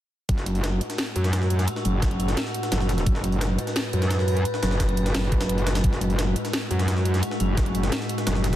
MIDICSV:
0, 0, Header, 1, 4, 480
1, 0, Start_track
1, 0, Key_signature, 3, "minor"
1, 0, Tempo, 346821
1, 403, Time_signature, 4, 2, 24, 8
1, 11846, End_track
2, 0, Start_track
2, 0, Title_t, "Synth drone"
2, 0, Program_c, 0, 95
2, 403, Note_on_c, 0, 45, 82
2, 403, Note_on_c, 0, 66, 89
2, 404, Note_on_c, 0, 56, 78
2, 4229, Note_off_c, 0, 66, 0
2, 4242, Note_on_c, 0, 71, 95
2, 8068, Note_off_c, 0, 71, 0
2, 8085, Note_on_c, 0, 66, 91
2, 11846, Note_off_c, 0, 45, 0
2, 11846, Note_off_c, 0, 56, 0
2, 11846, Note_off_c, 0, 66, 0
2, 11846, End_track
3, 0, Start_track
3, 0, Title_t, "Wobble bass"
3, 0, Program_c, 1, 39
3, 401, Note_on_c, 1, 30, 95
3, 1103, Note_off_c, 1, 30, 0
3, 1602, Note_on_c, 1, 42, 100
3, 2303, Note_off_c, 1, 42, 0
3, 2561, Note_on_c, 1, 30, 96
3, 3263, Note_off_c, 1, 30, 0
3, 3761, Note_on_c, 1, 30, 96
3, 4223, Note_off_c, 1, 30, 0
3, 4241, Note_on_c, 1, 30, 95
3, 4943, Note_off_c, 1, 30, 0
3, 5443, Note_on_c, 1, 42, 101
3, 6144, Note_off_c, 1, 42, 0
3, 6402, Note_on_c, 1, 30, 92
3, 7104, Note_off_c, 1, 30, 0
3, 7122, Note_on_c, 1, 30, 92
3, 8063, Note_off_c, 1, 30, 0
3, 8081, Note_on_c, 1, 30, 94
3, 8783, Note_off_c, 1, 30, 0
3, 9283, Note_on_c, 1, 42, 99
3, 9984, Note_off_c, 1, 42, 0
3, 10242, Note_on_c, 1, 30, 95
3, 10944, Note_off_c, 1, 30, 0
3, 11443, Note_on_c, 1, 30, 92
3, 11846, Note_off_c, 1, 30, 0
3, 11846, End_track
4, 0, Start_track
4, 0, Title_t, "Drums"
4, 401, Note_on_c, 9, 36, 114
4, 401, Note_on_c, 9, 42, 88
4, 402, Note_off_c, 9, 42, 0
4, 402, Note_on_c, 9, 42, 91
4, 521, Note_on_c, 9, 38, 47
4, 539, Note_off_c, 9, 36, 0
4, 541, Note_off_c, 9, 42, 0
4, 641, Note_on_c, 9, 42, 66
4, 642, Note_off_c, 9, 42, 0
4, 642, Note_on_c, 9, 42, 66
4, 659, Note_off_c, 9, 38, 0
4, 763, Note_off_c, 9, 42, 0
4, 763, Note_on_c, 9, 42, 44
4, 881, Note_off_c, 9, 42, 0
4, 881, Note_on_c, 9, 38, 110
4, 881, Note_on_c, 9, 42, 86
4, 882, Note_off_c, 9, 42, 0
4, 882, Note_on_c, 9, 42, 94
4, 1020, Note_off_c, 9, 38, 0
4, 1020, Note_off_c, 9, 42, 0
4, 1121, Note_on_c, 9, 42, 66
4, 1122, Note_off_c, 9, 42, 0
4, 1122, Note_on_c, 9, 42, 65
4, 1241, Note_on_c, 9, 38, 38
4, 1242, Note_off_c, 9, 42, 0
4, 1242, Note_on_c, 9, 42, 38
4, 1360, Note_on_c, 9, 46, 84
4, 1362, Note_off_c, 9, 38, 0
4, 1362, Note_off_c, 9, 42, 0
4, 1362, Note_on_c, 9, 38, 118
4, 1362, Note_on_c, 9, 42, 96
4, 1480, Note_off_c, 9, 42, 0
4, 1480, Note_on_c, 9, 42, 44
4, 1499, Note_off_c, 9, 46, 0
4, 1501, Note_off_c, 9, 38, 0
4, 1601, Note_off_c, 9, 42, 0
4, 1601, Note_on_c, 9, 42, 68
4, 1602, Note_off_c, 9, 42, 0
4, 1602, Note_on_c, 9, 42, 63
4, 1720, Note_on_c, 9, 38, 51
4, 1723, Note_off_c, 9, 42, 0
4, 1723, Note_on_c, 9, 42, 38
4, 1840, Note_off_c, 9, 38, 0
4, 1840, Note_off_c, 9, 42, 0
4, 1840, Note_on_c, 9, 38, 114
4, 1840, Note_on_c, 9, 42, 84
4, 1842, Note_off_c, 9, 42, 0
4, 1842, Note_on_c, 9, 42, 94
4, 1961, Note_off_c, 9, 38, 0
4, 1961, Note_on_c, 9, 38, 46
4, 1981, Note_off_c, 9, 42, 0
4, 2080, Note_on_c, 9, 42, 67
4, 2082, Note_off_c, 9, 42, 0
4, 2082, Note_on_c, 9, 42, 67
4, 2099, Note_off_c, 9, 38, 0
4, 2199, Note_on_c, 9, 38, 39
4, 2202, Note_off_c, 9, 42, 0
4, 2202, Note_on_c, 9, 42, 37
4, 2319, Note_off_c, 9, 42, 0
4, 2319, Note_on_c, 9, 42, 84
4, 2322, Note_off_c, 9, 42, 0
4, 2322, Note_on_c, 9, 42, 92
4, 2338, Note_off_c, 9, 38, 0
4, 2440, Note_on_c, 9, 38, 44
4, 2460, Note_off_c, 9, 42, 0
4, 2560, Note_on_c, 9, 42, 67
4, 2562, Note_off_c, 9, 42, 0
4, 2562, Note_on_c, 9, 42, 68
4, 2579, Note_off_c, 9, 38, 0
4, 2701, Note_off_c, 9, 42, 0
4, 2800, Note_on_c, 9, 38, 117
4, 2800, Note_on_c, 9, 42, 83
4, 2801, Note_on_c, 9, 36, 106
4, 2802, Note_off_c, 9, 42, 0
4, 2802, Note_on_c, 9, 42, 93
4, 2922, Note_off_c, 9, 42, 0
4, 2922, Note_on_c, 9, 42, 38
4, 2938, Note_off_c, 9, 38, 0
4, 2939, Note_off_c, 9, 36, 0
4, 3040, Note_off_c, 9, 42, 0
4, 3040, Note_on_c, 9, 42, 64
4, 3042, Note_off_c, 9, 42, 0
4, 3042, Note_on_c, 9, 42, 64
4, 3160, Note_on_c, 9, 38, 50
4, 3163, Note_off_c, 9, 42, 0
4, 3163, Note_on_c, 9, 42, 36
4, 3281, Note_off_c, 9, 42, 0
4, 3281, Note_on_c, 9, 42, 92
4, 3282, Note_off_c, 9, 38, 0
4, 3282, Note_off_c, 9, 42, 0
4, 3282, Note_on_c, 9, 38, 124
4, 3282, Note_on_c, 9, 42, 93
4, 3401, Note_off_c, 9, 38, 0
4, 3401, Note_on_c, 9, 38, 42
4, 3421, Note_off_c, 9, 42, 0
4, 3521, Note_on_c, 9, 42, 65
4, 3522, Note_off_c, 9, 42, 0
4, 3522, Note_on_c, 9, 42, 65
4, 3540, Note_off_c, 9, 38, 0
4, 3642, Note_on_c, 9, 38, 46
4, 3643, Note_off_c, 9, 42, 0
4, 3643, Note_on_c, 9, 42, 38
4, 3762, Note_off_c, 9, 38, 0
4, 3762, Note_off_c, 9, 42, 0
4, 3762, Note_on_c, 9, 38, 113
4, 3762, Note_on_c, 9, 42, 87
4, 3763, Note_off_c, 9, 42, 0
4, 3763, Note_on_c, 9, 42, 92
4, 3882, Note_off_c, 9, 38, 0
4, 3882, Note_on_c, 9, 38, 43
4, 3901, Note_off_c, 9, 42, 0
4, 4002, Note_off_c, 9, 38, 0
4, 4002, Note_on_c, 9, 38, 38
4, 4002, Note_on_c, 9, 42, 66
4, 4003, Note_off_c, 9, 42, 0
4, 4003, Note_on_c, 9, 42, 67
4, 4122, Note_off_c, 9, 38, 0
4, 4122, Note_on_c, 9, 38, 43
4, 4123, Note_off_c, 9, 42, 0
4, 4123, Note_on_c, 9, 42, 37
4, 4241, Note_off_c, 9, 42, 0
4, 4241, Note_on_c, 9, 36, 122
4, 4241, Note_on_c, 9, 42, 86
4, 4243, Note_off_c, 9, 42, 0
4, 4243, Note_on_c, 9, 42, 90
4, 4261, Note_off_c, 9, 38, 0
4, 4361, Note_on_c, 9, 38, 48
4, 4380, Note_off_c, 9, 36, 0
4, 4381, Note_off_c, 9, 42, 0
4, 4482, Note_on_c, 9, 42, 68
4, 4483, Note_off_c, 9, 42, 0
4, 4483, Note_on_c, 9, 42, 61
4, 4499, Note_off_c, 9, 38, 0
4, 4600, Note_off_c, 9, 42, 0
4, 4600, Note_on_c, 9, 42, 44
4, 4722, Note_off_c, 9, 42, 0
4, 4722, Note_on_c, 9, 38, 115
4, 4722, Note_on_c, 9, 42, 88
4, 4724, Note_off_c, 9, 42, 0
4, 4724, Note_on_c, 9, 42, 90
4, 4860, Note_off_c, 9, 38, 0
4, 4862, Note_off_c, 9, 42, 0
4, 4961, Note_on_c, 9, 42, 65
4, 4963, Note_off_c, 9, 42, 0
4, 4963, Note_on_c, 9, 42, 62
4, 5081, Note_on_c, 9, 38, 38
4, 5083, Note_off_c, 9, 42, 0
4, 5083, Note_on_c, 9, 42, 33
4, 5201, Note_on_c, 9, 46, 82
4, 5202, Note_off_c, 9, 38, 0
4, 5202, Note_off_c, 9, 42, 0
4, 5202, Note_on_c, 9, 38, 127
4, 5202, Note_on_c, 9, 42, 92
4, 5322, Note_off_c, 9, 42, 0
4, 5322, Note_on_c, 9, 42, 45
4, 5339, Note_off_c, 9, 46, 0
4, 5341, Note_off_c, 9, 38, 0
4, 5441, Note_off_c, 9, 42, 0
4, 5441, Note_on_c, 9, 42, 67
4, 5443, Note_off_c, 9, 42, 0
4, 5443, Note_on_c, 9, 42, 62
4, 5562, Note_on_c, 9, 38, 54
4, 5563, Note_off_c, 9, 42, 0
4, 5563, Note_on_c, 9, 42, 35
4, 5681, Note_off_c, 9, 38, 0
4, 5681, Note_off_c, 9, 42, 0
4, 5681, Note_on_c, 9, 38, 113
4, 5681, Note_on_c, 9, 42, 86
4, 5683, Note_off_c, 9, 42, 0
4, 5683, Note_on_c, 9, 42, 90
4, 5802, Note_off_c, 9, 38, 0
4, 5802, Note_on_c, 9, 38, 46
4, 5822, Note_off_c, 9, 42, 0
4, 5921, Note_on_c, 9, 46, 70
4, 5923, Note_on_c, 9, 42, 61
4, 5940, Note_off_c, 9, 38, 0
4, 6042, Note_off_c, 9, 42, 0
4, 6042, Note_on_c, 9, 42, 40
4, 6043, Note_off_c, 9, 42, 0
4, 6043, Note_on_c, 9, 42, 35
4, 6060, Note_off_c, 9, 46, 0
4, 6161, Note_off_c, 9, 42, 0
4, 6161, Note_on_c, 9, 42, 60
4, 6163, Note_off_c, 9, 42, 0
4, 6163, Note_on_c, 9, 42, 84
4, 6282, Note_on_c, 9, 38, 47
4, 6301, Note_off_c, 9, 42, 0
4, 6403, Note_off_c, 9, 38, 0
4, 6403, Note_on_c, 9, 38, 103
4, 6403, Note_on_c, 9, 42, 61
4, 6522, Note_off_c, 9, 38, 0
4, 6522, Note_on_c, 9, 38, 44
4, 6542, Note_off_c, 9, 42, 0
4, 6642, Note_off_c, 9, 38, 0
4, 6642, Note_on_c, 9, 36, 59
4, 6642, Note_on_c, 9, 38, 109
4, 6642, Note_on_c, 9, 42, 85
4, 6643, Note_off_c, 9, 42, 0
4, 6643, Note_on_c, 9, 42, 86
4, 6764, Note_off_c, 9, 42, 0
4, 6764, Note_on_c, 9, 42, 36
4, 6780, Note_off_c, 9, 36, 0
4, 6780, Note_off_c, 9, 38, 0
4, 6882, Note_off_c, 9, 42, 0
4, 6882, Note_on_c, 9, 42, 65
4, 6883, Note_off_c, 9, 42, 0
4, 6883, Note_on_c, 9, 42, 61
4, 7001, Note_on_c, 9, 38, 51
4, 7003, Note_off_c, 9, 42, 0
4, 7003, Note_on_c, 9, 42, 35
4, 7120, Note_off_c, 9, 38, 0
4, 7120, Note_off_c, 9, 42, 0
4, 7120, Note_on_c, 9, 38, 107
4, 7120, Note_on_c, 9, 42, 81
4, 7123, Note_off_c, 9, 38, 0
4, 7123, Note_off_c, 9, 42, 0
4, 7123, Note_on_c, 9, 38, 124
4, 7123, Note_on_c, 9, 42, 89
4, 7262, Note_off_c, 9, 38, 0
4, 7262, Note_off_c, 9, 42, 0
4, 7361, Note_on_c, 9, 42, 59
4, 7362, Note_on_c, 9, 36, 101
4, 7363, Note_off_c, 9, 42, 0
4, 7363, Note_on_c, 9, 42, 59
4, 7481, Note_off_c, 9, 42, 0
4, 7481, Note_on_c, 9, 38, 102
4, 7481, Note_on_c, 9, 42, 77
4, 7484, Note_off_c, 9, 42, 0
4, 7484, Note_on_c, 9, 42, 35
4, 7501, Note_off_c, 9, 36, 0
4, 7604, Note_off_c, 9, 42, 0
4, 7604, Note_on_c, 9, 42, 85
4, 7620, Note_off_c, 9, 38, 0
4, 7722, Note_off_c, 9, 42, 0
4, 7722, Note_on_c, 9, 42, 59
4, 7842, Note_off_c, 9, 42, 0
4, 7842, Note_on_c, 9, 38, 104
4, 7842, Note_on_c, 9, 42, 78
4, 7844, Note_off_c, 9, 42, 0
4, 7844, Note_on_c, 9, 42, 62
4, 7962, Note_off_c, 9, 38, 0
4, 7962, Note_off_c, 9, 42, 0
4, 7962, Note_on_c, 9, 38, 102
4, 7962, Note_on_c, 9, 42, 80
4, 7964, Note_off_c, 9, 42, 0
4, 7964, Note_on_c, 9, 42, 34
4, 8082, Note_off_c, 9, 42, 0
4, 8082, Note_on_c, 9, 36, 113
4, 8082, Note_on_c, 9, 42, 83
4, 8084, Note_off_c, 9, 42, 0
4, 8084, Note_on_c, 9, 42, 90
4, 8100, Note_off_c, 9, 38, 0
4, 8202, Note_on_c, 9, 38, 48
4, 8220, Note_off_c, 9, 36, 0
4, 8223, Note_off_c, 9, 42, 0
4, 8322, Note_on_c, 9, 42, 68
4, 8324, Note_off_c, 9, 42, 0
4, 8324, Note_on_c, 9, 42, 59
4, 8341, Note_off_c, 9, 38, 0
4, 8442, Note_off_c, 9, 42, 0
4, 8442, Note_on_c, 9, 42, 44
4, 8562, Note_off_c, 9, 42, 0
4, 8562, Note_on_c, 9, 38, 114
4, 8562, Note_on_c, 9, 42, 85
4, 8563, Note_off_c, 9, 42, 0
4, 8563, Note_on_c, 9, 42, 88
4, 8701, Note_off_c, 9, 38, 0
4, 8702, Note_off_c, 9, 42, 0
4, 8801, Note_on_c, 9, 42, 66
4, 8803, Note_off_c, 9, 42, 0
4, 8803, Note_on_c, 9, 42, 61
4, 8922, Note_on_c, 9, 38, 37
4, 8924, Note_off_c, 9, 42, 0
4, 8924, Note_on_c, 9, 42, 34
4, 9042, Note_on_c, 9, 46, 81
4, 9043, Note_off_c, 9, 38, 0
4, 9043, Note_off_c, 9, 42, 0
4, 9043, Note_on_c, 9, 38, 123
4, 9043, Note_on_c, 9, 42, 91
4, 9162, Note_off_c, 9, 42, 0
4, 9162, Note_on_c, 9, 42, 44
4, 9180, Note_off_c, 9, 46, 0
4, 9182, Note_off_c, 9, 38, 0
4, 9282, Note_off_c, 9, 42, 0
4, 9282, Note_on_c, 9, 42, 67
4, 9284, Note_off_c, 9, 42, 0
4, 9284, Note_on_c, 9, 42, 62
4, 9402, Note_on_c, 9, 38, 52
4, 9405, Note_off_c, 9, 42, 0
4, 9405, Note_on_c, 9, 42, 35
4, 9521, Note_off_c, 9, 38, 0
4, 9521, Note_off_c, 9, 42, 0
4, 9521, Note_on_c, 9, 38, 111
4, 9521, Note_on_c, 9, 42, 89
4, 9524, Note_off_c, 9, 42, 0
4, 9524, Note_on_c, 9, 42, 85
4, 9642, Note_off_c, 9, 38, 0
4, 9642, Note_on_c, 9, 38, 44
4, 9662, Note_off_c, 9, 42, 0
4, 9763, Note_on_c, 9, 42, 67
4, 9764, Note_off_c, 9, 42, 0
4, 9764, Note_on_c, 9, 42, 63
4, 9781, Note_off_c, 9, 38, 0
4, 9883, Note_off_c, 9, 42, 0
4, 9883, Note_on_c, 9, 38, 41
4, 9883, Note_on_c, 9, 42, 35
4, 10004, Note_off_c, 9, 42, 0
4, 10004, Note_on_c, 9, 42, 91
4, 10021, Note_off_c, 9, 38, 0
4, 10123, Note_on_c, 9, 38, 44
4, 10142, Note_off_c, 9, 42, 0
4, 10243, Note_on_c, 9, 42, 64
4, 10261, Note_off_c, 9, 38, 0
4, 10382, Note_off_c, 9, 42, 0
4, 10482, Note_on_c, 9, 36, 102
4, 10483, Note_on_c, 9, 38, 114
4, 10483, Note_on_c, 9, 42, 84
4, 10603, Note_off_c, 9, 42, 0
4, 10603, Note_on_c, 9, 42, 36
4, 10620, Note_off_c, 9, 36, 0
4, 10621, Note_off_c, 9, 38, 0
4, 10723, Note_off_c, 9, 42, 0
4, 10723, Note_on_c, 9, 42, 63
4, 10724, Note_off_c, 9, 42, 0
4, 10724, Note_on_c, 9, 42, 63
4, 10843, Note_off_c, 9, 42, 0
4, 10843, Note_on_c, 9, 42, 37
4, 10844, Note_on_c, 9, 38, 52
4, 10963, Note_off_c, 9, 38, 0
4, 10963, Note_off_c, 9, 42, 0
4, 10963, Note_on_c, 9, 38, 116
4, 10963, Note_on_c, 9, 42, 91
4, 11084, Note_off_c, 9, 38, 0
4, 11084, Note_on_c, 9, 38, 42
4, 11102, Note_off_c, 9, 42, 0
4, 11202, Note_on_c, 9, 42, 68
4, 11203, Note_off_c, 9, 42, 0
4, 11203, Note_on_c, 9, 42, 64
4, 11222, Note_off_c, 9, 38, 0
4, 11322, Note_on_c, 9, 38, 45
4, 11324, Note_off_c, 9, 42, 0
4, 11324, Note_on_c, 9, 42, 36
4, 11442, Note_off_c, 9, 38, 0
4, 11442, Note_off_c, 9, 42, 0
4, 11442, Note_on_c, 9, 38, 116
4, 11442, Note_on_c, 9, 42, 90
4, 11444, Note_off_c, 9, 42, 0
4, 11444, Note_on_c, 9, 42, 91
4, 11562, Note_off_c, 9, 38, 0
4, 11562, Note_on_c, 9, 38, 45
4, 11582, Note_off_c, 9, 42, 0
4, 11682, Note_off_c, 9, 38, 0
4, 11682, Note_on_c, 9, 38, 38
4, 11682, Note_on_c, 9, 42, 66
4, 11683, Note_off_c, 9, 42, 0
4, 11683, Note_on_c, 9, 42, 61
4, 11802, Note_off_c, 9, 38, 0
4, 11802, Note_on_c, 9, 38, 43
4, 11804, Note_off_c, 9, 42, 0
4, 11804, Note_on_c, 9, 42, 37
4, 11846, Note_off_c, 9, 38, 0
4, 11846, Note_off_c, 9, 42, 0
4, 11846, End_track
0, 0, End_of_file